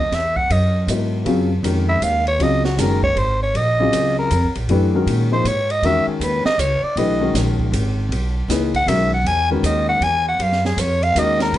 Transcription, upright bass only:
0.00 0.11 D#2 medium
0.11 0.48 E2 medium
0.50 0.87 F#2 medium
0.87 1.25 G#2 medium
1.25 1.62 F#2 medium
1.63 2.01 F2 medium
2.01 2.39 D#2 medium
2.39 2.76 C#2 medium
2.77 3.15 F#1 medium
3.16 3.53 G#1 medium
3.55 3.92 A#1 medium
3.93 4.30 C#2 medium
4.31 4.44 F2 medium
4.43 4.55 C#2 medium
4.56 4.67 A#1 medium
4.68 5.05 F#2 medium
5.06 5.44 A#2 loud
5.44 5.82 G#2 medium
5.82 6.05 E2 medium
6.06 muted upright bass stroke soft
6.20 6.43 D#2 medium
6.45 muted upright bass stroke soft
6.58 6.81 C#2 medium
6.82 muted upright bass stroke soft
6.96 7.33 B1 medium
7.34 7.71 A#1 medium
7.72 8.08 G#1 loud
8.09 8.47 B1 medium
8.48 8.86 C#2 medium
8.86 9.23 B1 medium
9.24 9.62 E2 medium
9.63 10.00 D#2 medium
10.00 10.38 E2 medium
10.39 10.76 F#2 medium
10.77 11.14 F2 medium
11.15 11.52 D#2 medium
11.53 11.58 C#2 medium

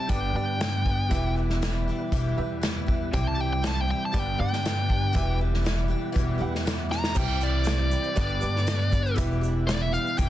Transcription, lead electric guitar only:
0.10 0.34 G5 medium
0.36 1.34 G5 medium
3.14 3.26 G5 loud
3.28 3.41 A5 medium
3.41 3.52 G5 medium
3.53 3.64 G5 medium
3.67 3.81 A5 medium
3.81 3.90 G5 medium
3.91 4.02 G5 medium
4.05 4.19 A5 medium
4.19 4.39 G5 medium
4.40 5.38 G5 medium
6.92 7.16 A#5 medium
7.18 7.42 G5 medium
7.43 8.16 D5 medium
8.18 9.15 D5 medium
9.67 9.80 D5 loud
9.81 9.93 E5 medium
9.93 10.18 F5 medium
10.18 10.29 G5 loud

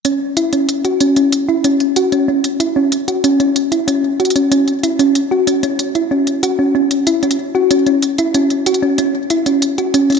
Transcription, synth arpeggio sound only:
0.05 0.13 C#4 medium
0.37 0.52 E4 medium
0.53 0.66 C#4 medium
0.85 0.98 F#4 medium
1.01 1.15 C#4 medium
1.17 1.25 C#4 medium
1.49 1.64 E4 medium
1.64 1.78 C#4 medium
1.96 2.10 F#4 medium
2.12 2.27 C#4 medium
2.28 2.36 C#4 medium
2.60 2.75 E4 medium
2.76 2.90 C#4 medium
3.08 3.21 F#4 medium
3.24 3.39 C#4 medium
3.40 3.48 C#4 medium
3.72 3.87 E4 medium
3.88 4.01 C#4 medium
4.20 4.33 F#4 medium
4.36 4.50 C#4 medium
4.52 4.60 C#4 medium
4.83 4.99 E4 medium
4.99 5.13 C#4 medium
5.31 5.45 F#4 medium
5.47 5.62 C#4 medium
5.63 5.71 C#4 medium
5.95 6.10 E4 medium
6.11 6.25 C#4 medium
6.43 6.56 F#4 medium
6.59 6.74 C#4 medium
6.75 6.83 C#4 medium
7.07 7.22 E4 medium
7.23 7.36 C#4 medium
7.55 7.68 F#4 medium
7.71 7.85 C#4 medium
7.87 7.95 C#4 medium
8.19 8.34 E4 medium
8.35 8.48 C#4 medium
8.67 8.80 F#4 medium
8.82 8.97 C#4 medium
8.98 9.07 C#4 medium
9.30 9.46 E4 medium
9.46 9.60 C#4 medium
9.78 9.92 F#4 medium
9.94 10.09 C#4 medium
10.10 10.18 C#4 medium

